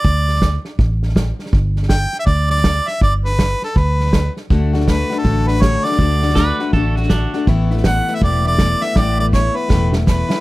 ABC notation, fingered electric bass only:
X:1
M:4/4
L:1/8
Q:"Swing" 1/4=162
K:D
V:1 name="Fingered electric bass" clef=bass
D,,4 A,,,4 | G,,,4 D,,4 | G,,,4 D,,4 | D,,4 A,,,4 |
D,,4 A,,,4 | A,,,4 E,,,4 | A,,,4 E,,,4 |]